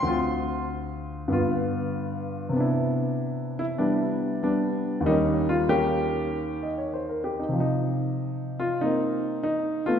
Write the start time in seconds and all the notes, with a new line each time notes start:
Already playing: C6
0.03 D2 D3 C4
0.07 F4
1.28 G2 D3 B3
1.33 F4
2.49 C3 B3
2.57 D4 E4
3.59 E4
3.78 G3 B3 D4 E4
4.43 G3 B3 D4
5.00 D#2 D#3
5.06 G3 A#3 D#4
5.11 C#4
5.49 F4
5.69 A#3 C#4 G4
6.63 D#5
6.78 C#5
6.94 C5
7.09 A#4
7.24 G4
7.39 D#4
7.49 C3 F3
7.60 D#4
8.59 F4
8.81 A#3 C4 D#4
9.43 D#4
9.86 A3 B3 F4